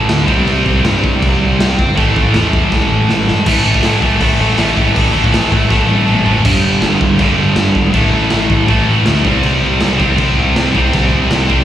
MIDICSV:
0, 0, Header, 1, 4, 480
1, 0, Start_track
1, 0, Key_signature, 0, "minor"
1, 0, Tempo, 373832
1, 600, Time_signature, 4, 2, 24, 8
1, 14946, End_track
2, 0, Start_track
2, 0, Title_t, "Distorted electric guitar"
2, 0, Program_c, 0, 30
2, 0, Note_on_c, 0, 45, 102
2, 0, Note_on_c, 0, 52, 102
2, 0, Note_on_c, 0, 57, 107
2, 323, Note_off_c, 0, 45, 0
2, 331, Note_on_c, 0, 48, 92
2, 342, Note_off_c, 0, 57, 0
2, 348, Note_off_c, 0, 52, 0
2, 354, Note_on_c, 0, 55, 95
2, 360, Note_on_c, 0, 60, 104
2, 2260, Note_off_c, 0, 48, 0
2, 2271, Note_off_c, 0, 55, 0
2, 2506, Note_on_c, 0, 45, 92
2, 2521, Note_on_c, 0, 52, 103
2, 2533, Note_off_c, 0, 60, 0
2, 2538, Note_on_c, 0, 57, 98
2, 4425, Note_off_c, 0, 45, 0
2, 4433, Note_off_c, 0, 52, 0
2, 4439, Note_on_c, 0, 45, 104
2, 4442, Note_off_c, 0, 57, 0
2, 4451, Note_on_c, 0, 52, 104
2, 4456, Note_on_c, 0, 57, 98
2, 4656, Note_off_c, 0, 45, 0
2, 4661, Note_on_c, 0, 45, 81
2, 4666, Note_off_c, 0, 52, 0
2, 4671, Note_on_c, 0, 52, 94
2, 4675, Note_off_c, 0, 57, 0
2, 4680, Note_on_c, 0, 57, 97
2, 4916, Note_off_c, 0, 45, 0
2, 4921, Note_on_c, 0, 45, 94
2, 4938, Note_off_c, 0, 52, 0
2, 4942, Note_off_c, 0, 57, 0
2, 4944, Note_on_c, 0, 52, 98
2, 4947, Note_on_c, 0, 57, 109
2, 5165, Note_off_c, 0, 45, 0
2, 5167, Note_off_c, 0, 52, 0
2, 5170, Note_on_c, 0, 45, 87
2, 5172, Note_on_c, 0, 52, 97
2, 5180, Note_off_c, 0, 57, 0
2, 5185, Note_on_c, 0, 57, 91
2, 5383, Note_off_c, 0, 45, 0
2, 5393, Note_off_c, 0, 52, 0
2, 5399, Note_on_c, 0, 45, 101
2, 5404, Note_off_c, 0, 57, 0
2, 5408, Note_on_c, 0, 52, 102
2, 5419, Note_on_c, 0, 57, 103
2, 5638, Note_off_c, 0, 45, 0
2, 5647, Note_off_c, 0, 57, 0
2, 5651, Note_off_c, 0, 52, 0
2, 5653, Note_on_c, 0, 45, 93
2, 5662, Note_on_c, 0, 57, 95
2, 5667, Note_on_c, 0, 52, 82
2, 5861, Note_off_c, 0, 45, 0
2, 5868, Note_off_c, 0, 52, 0
2, 5868, Note_off_c, 0, 57, 0
2, 5876, Note_on_c, 0, 45, 104
2, 5883, Note_on_c, 0, 52, 101
2, 5883, Note_on_c, 0, 57, 114
2, 6081, Note_off_c, 0, 45, 0
2, 6087, Note_off_c, 0, 52, 0
2, 6096, Note_on_c, 0, 45, 83
2, 6097, Note_off_c, 0, 57, 0
2, 6102, Note_on_c, 0, 52, 89
2, 6112, Note_on_c, 0, 57, 94
2, 6341, Note_off_c, 0, 45, 0
2, 6350, Note_off_c, 0, 52, 0
2, 6355, Note_off_c, 0, 57, 0
2, 6357, Note_on_c, 0, 45, 93
2, 6365, Note_on_c, 0, 52, 102
2, 6371, Note_on_c, 0, 57, 126
2, 6565, Note_off_c, 0, 45, 0
2, 6568, Note_off_c, 0, 52, 0
2, 6572, Note_off_c, 0, 57, 0
2, 6580, Note_on_c, 0, 45, 89
2, 6583, Note_on_c, 0, 52, 91
2, 6587, Note_on_c, 0, 57, 90
2, 6815, Note_off_c, 0, 45, 0
2, 6819, Note_off_c, 0, 52, 0
2, 6819, Note_off_c, 0, 57, 0
2, 6830, Note_on_c, 0, 45, 105
2, 6834, Note_on_c, 0, 52, 107
2, 6834, Note_on_c, 0, 57, 121
2, 7067, Note_off_c, 0, 45, 0
2, 7067, Note_off_c, 0, 57, 0
2, 7070, Note_off_c, 0, 52, 0
2, 7082, Note_on_c, 0, 57, 106
2, 7083, Note_on_c, 0, 45, 96
2, 7086, Note_on_c, 0, 52, 94
2, 7299, Note_off_c, 0, 52, 0
2, 7300, Note_off_c, 0, 45, 0
2, 7306, Note_off_c, 0, 57, 0
2, 7314, Note_on_c, 0, 52, 104
2, 7316, Note_on_c, 0, 45, 108
2, 7321, Note_on_c, 0, 57, 107
2, 7522, Note_off_c, 0, 45, 0
2, 7536, Note_off_c, 0, 52, 0
2, 7537, Note_on_c, 0, 45, 90
2, 7539, Note_off_c, 0, 57, 0
2, 7551, Note_on_c, 0, 52, 93
2, 7554, Note_on_c, 0, 57, 92
2, 7769, Note_off_c, 0, 45, 0
2, 7775, Note_off_c, 0, 57, 0
2, 7779, Note_off_c, 0, 52, 0
2, 7784, Note_on_c, 0, 45, 95
2, 7791, Note_on_c, 0, 57, 96
2, 7794, Note_on_c, 0, 52, 107
2, 8019, Note_off_c, 0, 45, 0
2, 8032, Note_off_c, 0, 52, 0
2, 8035, Note_on_c, 0, 45, 89
2, 8039, Note_off_c, 0, 57, 0
2, 8048, Note_on_c, 0, 52, 94
2, 8055, Note_on_c, 0, 57, 88
2, 8265, Note_off_c, 0, 45, 0
2, 8272, Note_off_c, 0, 52, 0
2, 8272, Note_on_c, 0, 43, 96
2, 8275, Note_off_c, 0, 57, 0
2, 8295, Note_on_c, 0, 50, 94
2, 8305, Note_on_c, 0, 55, 98
2, 9207, Note_off_c, 0, 43, 0
2, 9214, Note_off_c, 0, 50, 0
2, 9222, Note_on_c, 0, 43, 83
2, 9229, Note_on_c, 0, 50, 80
2, 9234, Note_off_c, 0, 55, 0
2, 9250, Note_on_c, 0, 55, 78
2, 10170, Note_off_c, 0, 50, 0
2, 10175, Note_on_c, 0, 45, 101
2, 10178, Note_off_c, 0, 43, 0
2, 10189, Note_off_c, 0, 55, 0
2, 10194, Note_on_c, 0, 52, 91
2, 10200, Note_on_c, 0, 57, 104
2, 11107, Note_off_c, 0, 45, 0
2, 11123, Note_on_c, 0, 45, 84
2, 11135, Note_off_c, 0, 52, 0
2, 11140, Note_on_c, 0, 52, 83
2, 11142, Note_off_c, 0, 57, 0
2, 11157, Note_on_c, 0, 57, 89
2, 11848, Note_off_c, 0, 45, 0
2, 11865, Note_off_c, 0, 57, 0
2, 11867, Note_on_c, 0, 48, 92
2, 11884, Note_off_c, 0, 52, 0
2, 11889, Note_on_c, 0, 55, 100
2, 11903, Note_on_c, 0, 60, 94
2, 12805, Note_off_c, 0, 60, 0
2, 12810, Note_on_c, 0, 60, 90
2, 12822, Note_off_c, 0, 55, 0
2, 12828, Note_on_c, 0, 55, 93
2, 12842, Note_off_c, 0, 48, 0
2, 12847, Note_on_c, 0, 48, 83
2, 13770, Note_off_c, 0, 48, 0
2, 13770, Note_off_c, 0, 60, 0
2, 13785, Note_on_c, 0, 48, 84
2, 13795, Note_off_c, 0, 55, 0
2, 13800, Note_on_c, 0, 55, 105
2, 13806, Note_on_c, 0, 60, 101
2, 14723, Note_off_c, 0, 60, 0
2, 14736, Note_off_c, 0, 48, 0
2, 14738, Note_on_c, 0, 60, 101
2, 14748, Note_off_c, 0, 55, 0
2, 14753, Note_on_c, 0, 55, 84
2, 14771, Note_on_c, 0, 48, 75
2, 14946, Note_off_c, 0, 48, 0
2, 14946, Note_off_c, 0, 55, 0
2, 14946, Note_off_c, 0, 60, 0
2, 14946, End_track
3, 0, Start_track
3, 0, Title_t, "Picked electric bass"
3, 0, Program_c, 1, 34
3, 121, Note_on_c, 1, 38, 88
3, 355, Note_on_c, 1, 36, 88
3, 374, Note_off_c, 1, 38, 0
3, 535, Note_off_c, 1, 36, 0
3, 589, Note_on_c, 1, 36, 103
3, 772, Note_off_c, 1, 36, 0
3, 845, Note_on_c, 1, 36, 81
3, 1022, Note_off_c, 1, 36, 0
3, 1078, Note_on_c, 1, 43, 100
3, 1438, Note_off_c, 1, 43, 0
3, 1570, Note_on_c, 1, 36, 98
3, 1747, Note_off_c, 1, 36, 0
3, 1809, Note_on_c, 1, 36, 93
3, 1986, Note_off_c, 1, 36, 0
3, 2043, Note_on_c, 1, 36, 95
3, 2223, Note_off_c, 1, 36, 0
3, 2296, Note_on_c, 1, 31, 93
3, 2472, Note_off_c, 1, 31, 0
3, 2537, Note_on_c, 1, 33, 100
3, 2712, Note_off_c, 1, 33, 0
3, 2776, Note_on_c, 1, 33, 91
3, 2952, Note_off_c, 1, 33, 0
3, 3021, Note_on_c, 1, 40, 93
3, 3373, Note_off_c, 1, 40, 0
3, 3497, Note_on_c, 1, 33, 97
3, 3673, Note_off_c, 1, 33, 0
3, 3731, Note_on_c, 1, 33, 86
3, 3909, Note_off_c, 1, 33, 0
3, 3987, Note_on_c, 1, 33, 95
3, 4159, Note_off_c, 1, 33, 0
3, 4221, Note_on_c, 1, 31, 89
3, 4396, Note_off_c, 1, 31, 0
3, 4447, Note_on_c, 1, 33, 95
3, 4614, Note_off_c, 1, 33, 0
3, 4693, Note_on_c, 1, 33, 82
3, 4858, Note_off_c, 1, 33, 0
3, 4918, Note_on_c, 1, 33, 98
3, 5088, Note_off_c, 1, 33, 0
3, 5171, Note_on_c, 1, 33, 93
3, 5337, Note_off_c, 1, 33, 0
3, 5410, Note_on_c, 1, 33, 97
3, 5576, Note_off_c, 1, 33, 0
3, 5643, Note_on_c, 1, 33, 86
3, 5811, Note_off_c, 1, 33, 0
3, 5878, Note_on_c, 1, 33, 95
3, 6047, Note_off_c, 1, 33, 0
3, 6125, Note_on_c, 1, 33, 88
3, 6292, Note_off_c, 1, 33, 0
3, 6371, Note_on_c, 1, 33, 100
3, 6536, Note_off_c, 1, 33, 0
3, 6609, Note_on_c, 1, 33, 86
3, 6774, Note_off_c, 1, 33, 0
3, 6841, Note_on_c, 1, 33, 104
3, 7009, Note_off_c, 1, 33, 0
3, 7087, Note_on_c, 1, 33, 99
3, 7253, Note_off_c, 1, 33, 0
3, 7323, Note_on_c, 1, 33, 98
3, 7490, Note_off_c, 1, 33, 0
3, 7543, Note_on_c, 1, 33, 86
3, 7717, Note_off_c, 1, 33, 0
3, 7793, Note_on_c, 1, 33, 98
3, 7963, Note_off_c, 1, 33, 0
3, 8034, Note_on_c, 1, 33, 86
3, 8203, Note_off_c, 1, 33, 0
3, 8279, Note_on_c, 1, 31, 94
3, 8495, Note_off_c, 1, 31, 0
3, 8515, Note_on_c, 1, 31, 88
3, 8733, Note_off_c, 1, 31, 0
3, 8765, Note_on_c, 1, 31, 98
3, 8978, Note_off_c, 1, 31, 0
3, 9000, Note_on_c, 1, 31, 92
3, 9215, Note_off_c, 1, 31, 0
3, 9237, Note_on_c, 1, 31, 98
3, 9453, Note_off_c, 1, 31, 0
3, 9470, Note_on_c, 1, 31, 80
3, 9689, Note_off_c, 1, 31, 0
3, 9727, Note_on_c, 1, 43, 93
3, 9939, Note_off_c, 1, 43, 0
3, 9954, Note_on_c, 1, 32, 94
3, 10172, Note_off_c, 1, 32, 0
3, 10199, Note_on_c, 1, 33, 102
3, 10414, Note_off_c, 1, 33, 0
3, 10431, Note_on_c, 1, 33, 86
3, 10650, Note_off_c, 1, 33, 0
3, 10688, Note_on_c, 1, 33, 99
3, 10899, Note_off_c, 1, 33, 0
3, 10911, Note_on_c, 1, 33, 89
3, 11129, Note_off_c, 1, 33, 0
3, 11145, Note_on_c, 1, 33, 104
3, 11366, Note_off_c, 1, 33, 0
3, 11392, Note_on_c, 1, 33, 85
3, 11610, Note_off_c, 1, 33, 0
3, 11644, Note_on_c, 1, 38, 90
3, 11857, Note_off_c, 1, 38, 0
3, 11878, Note_on_c, 1, 36, 88
3, 12093, Note_off_c, 1, 36, 0
3, 12121, Note_on_c, 1, 36, 103
3, 12335, Note_off_c, 1, 36, 0
3, 12364, Note_on_c, 1, 36, 92
3, 12576, Note_off_c, 1, 36, 0
3, 12599, Note_on_c, 1, 36, 106
3, 12813, Note_off_c, 1, 36, 0
3, 12839, Note_on_c, 1, 36, 95
3, 13053, Note_off_c, 1, 36, 0
3, 13079, Note_on_c, 1, 36, 99
3, 13293, Note_off_c, 1, 36, 0
3, 13316, Note_on_c, 1, 36, 80
3, 13531, Note_off_c, 1, 36, 0
3, 13557, Note_on_c, 1, 48, 92
3, 13771, Note_off_c, 1, 48, 0
3, 13798, Note_on_c, 1, 36, 84
3, 14011, Note_off_c, 1, 36, 0
3, 14041, Note_on_c, 1, 36, 97
3, 14253, Note_off_c, 1, 36, 0
3, 14280, Note_on_c, 1, 36, 88
3, 14492, Note_off_c, 1, 36, 0
3, 14512, Note_on_c, 1, 36, 102
3, 14727, Note_off_c, 1, 36, 0
3, 14761, Note_on_c, 1, 36, 88
3, 14946, Note_off_c, 1, 36, 0
3, 14946, End_track
4, 0, Start_track
4, 0, Title_t, "Drums"
4, 117, Note_on_c, 9, 38, 125
4, 117, Note_on_c, 9, 49, 67
4, 245, Note_off_c, 9, 38, 0
4, 245, Note_off_c, 9, 49, 0
4, 361, Note_on_c, 9, 36, 100
4, 489, Note_off_c, 9, 36, 0
4, 608, Note_on_c, 9, 49, 66
4, 736, Note_off_c, 9, 49, 0
4, 846, Note_on_c, 9, 36, 85
4, 975, Note_off_c, 9, 36, 0
4, 1088, Note_on_c, 9, 38, 123
4, 1088, Note_on_c, 9, 49, 67
4, 1216, Note_off_c, 9, 38, 0
4, 1216, Note_off_c, 9, 49, 0
4, 1331, Note_on_c, 9, 36, 91
4, 1460, Note_off_c, 9, 36, 0
4, 1569, Note_on_c, 9, 49, 66
4, 1574, Note_on_c, 9, 36, 100
4, 1698, Note_off_c, 9, 49, 0
4, 1702, Note_off_c, 9, 36, 0
4, 2060, Note_on_c, 9, 38, 124
4, 2060, Note_on_c, 9, 49, 71
4, 2188, Note_off_c, 9, 38, 0
4, 2188, Note_off_c, 9, 49, 0
4, 2296, Note_on_c, 9, 36, 90
4, 2424, Note_off_c, 9, 36, 0
4, 2536, Note_on_c, 9, 36, 113
4, 2538, Note_on_c, 9, 49, 66
4, 2664, Note_off_c, 9, 36, 0
4, 2666, Note_off_c, 9, 49, 0
4, 2776, Note_on_c, 9, 36, 91
4, 2905, Note_off_c, 9, 36, 0
4, 3007, Note_on_c, 9, 38, 107
4, 3007, Note_on_c, 9, 49, 61
4, 3135, Note_off_c, 9, 38, 0
4, 3135, Note_off_c, 9, 49, 0
4, 3253, Note_on_c, 9, 36, 94
4, 3382, Note_off_c, 9, 36, 0
4, 3488, Note_on_c, 9, 38, 64
4, 3493, Note_on_c, 9, 36, 108
4, 3616, Note_off_c, 9, 38, 0
4, 3621, Note_off_c, 9, 36, 0
4, 3972, Note_on_c, 9, 38, 98
4, 4100, Note_off_c, 9, 38, 0
4, 4205, Note_on_c, 9, 38, 88
4, 4334, Note_off_c, 9, 38, 0
4, 4443, Note_on_c, 9, 57, 127
4, 4449, Note_on_c, 9, 36, 114
4, 4571, Note_off_c, 9, 57, 0
4, 4578, Note_off_c, 9, 36, 0
4, 4808, Note_on_c, 9, 36, 89
4, 4917, Note_on_c, 9, 38, 118
4, 4917, Note_on_c, 9, 46, 67
4, 4936, Note_off_c, 9, 36, 0
4, 5046, Note_off_c, 9, 38, 0
4, 5046, Note_off_c, 9, 46, 0
4, 5165, Note_on_c, 9, 36, 96
4, 5294, Note_off_c, 9, 36, 0
4, 5397, Note_on_c, 9, 46, 67
4, 5404, Note_on_c, 9, 36, 117
4, 5526, Note_off_c, 9, 46, 0
4, 5533, Note_off_c, 9, 36, 0
4, 5879, Note_on_c, 9, 38, 127
4, 5879, Note_on_c, 9, 46, 74
4, 6007, Note_off_c, 9, 38, 0
4, 6007, Note_off_c, 9, 46, 0
4, 6128, Note_on_c, 9, 36, 84
4, 6257, Note_off_c, 9, 36, 0
4, 6370, Note_on_c, 9, 36, 118
4, 6376, Note_on_c, 9, 46, 65
4, 6499, Note_off_c, 9, 36, 0
4, 6505, Note_off_c, 9, 46, 0
4, 6732, Note_on_c, 9, 36, 85
4, 6854, Note_on_c, 9, 38, 117
4, 6854, Note_on_c, 9, 46, 62
4, 6860, Note_off_c, 9, 36, 0
4, 6982, Note_off_c, 9, 38, 0
4, 6982, Note_off_c, 9, 46, 0
4, 7090, Note_on_c, 9, 36, 94
4, 7219, Note_off_c, 9, 36, 0
4, 7325, Note_on_c, 9, 38, 71
4, 7326, Note_on_c, 9, 36, 116
4, 7453, Note_off_c, 9, 38, 0
4, 7454, Note_off_c, 9, 36, 0
4, 7561, Note_on_c, 9, 48, 73
4, 7689, Note_off_c, 9, 48, 0
4, 7804, Note_on_c, 9, 45, 113
4, 7932, Note_off_c, 9, 45, 0
4, 8037, Note_on_c, 9, 43, 99
4, 8165, Note_off_c, 9, 43, 0
4, 8282, Note_on_c, 9, 36, 124
4, 8282, Note_on_c, 9, 49, 69
4, 8282, Note_on_c, 9, 57, 124
4, 8410, Note_off_c, 9, 36, 0
4, 8411, Note_off_c, 9, 49, 0
4, 8411, Note_off_c, 9, 57, 0
4, 8756, Note_on_c, 9, 38, 113
4, 8756, Note_on_c, 9, 49, 67
4, 8885, Note_off_c, 9, 38, 0
4, 8885, Note_off_c, 9, 49, 0
4, 8999, Note_on_c, 9, 36, 92
4, 9127, Note_off_c, 9, 36, 0
4, 9229, Note_on_c, 9, 49, 65
4, 9236, Note_on_c, 9, 36, 111
4, 9358, Note_off_c, 9, 49, 0
4, 9364, Note_off_c, 9, 36, 0
4, 9708, Note_on_c, 9, 38, 121
4, 9708, Note_on_c, 9, 49, 68
4, 9837, Note_off_c, 9, 38, 0
4, 9837, Note_off_c, 9, 49, 0
4, 9952, Note_on_c, 9, 36, 87
4, 10080, Note_off_c, 9, 36, 0
4, 10189, Note_on_c, 9, 49, 70
4, 10194, Note_on_c, 9, 36, 117
4, 10318, Note_off_c, 9, 49, 0
4, 10322, Note_off_c, 9, 36, 0
4, 10662, Note_on_c, 9, 38, 125
4, 10662, Note_on_c, 9, 49, 62
4, 10791, Note_off_c, 9, 38, 0
4, 10791, Note_off_c, 9, 49, 0
4, 10912, Note_on_c, 9, 36, 90
4, 11041, Note_off_c, 9, 36, 0
4, 11146, Note_on_c, 9, 49, 57
4, 11151, Note_on_c, 9, 36, 112
4, 11274, Note_off_c, 9, 49, 0
4, 11279, Note_off_c, 9, 36, 0
4, 11629, Note_on_c, 9, 38, 121
4, 11629, Note_on_c, 9, 49, 69
4, 11757, Note_off_c, 9, 38, 0
4, 11757, Note_off_c, 9, 49, 0
4, 11873, Note_on_c, 9, 36, 107
4, 12002, Note_off_c, 9, 36, 0
4, 12111, Note_on_c, 9, 49, 72
4, 12239, Note_off_c, 9, 49, 0
4, 12590, Note_on_c, 9, 38, 119
4, 12590, Note_on_c, 9, 49, 73
4, 12719, Note_off_c, 9, 38, 0
4, 12719, Note_off_c, 9, 49, 0
4, 12836, Note_on_c, 9, 36, 97
4, 12965, Note_off_c, 9, 36, 0
4, 13070, Note_on_c, 9, 49, 69
4, 13076, Note_on_c, 9, 36, 107
4, 13199, Note_off_c, 9, 49, 0
4, 13205, Note_off_c, 9, 36, 0
4, 13562, Note_on_c, 9, 38, 126
4, 13562, Note_on_c, 9, 49, 70
4, 13691, Note_off_c, 9, 38, 0
4, 13691, Note_off_c, 9, 49, 0
4, 13798, Note_on_c, 9, 36, 90
4, 13927, Note_off_c, 9, 36, 0
4, 14040, Note_on_c, 9, 36, 119
4, 14042, Note_on_c, 9, 49, 69
4, 14168, Note_off_c, 9, 36, 0
4, 14170, Note_off_c, 9, 49, 0
4, 14518, Note_on_c, 9, 38, 115
4, 14518, Note_on_c, 9, 49, 66
4, 14646, Note_off_c, 9, 38, 0
4, 14646, Note_off_c, 9, 49, 0
4, 14763, Note_on_c, 9, 36, 97
4, 14892, Note_off_c, 9, 36, 0
4, 14946, End_track
0, 0, End_of_file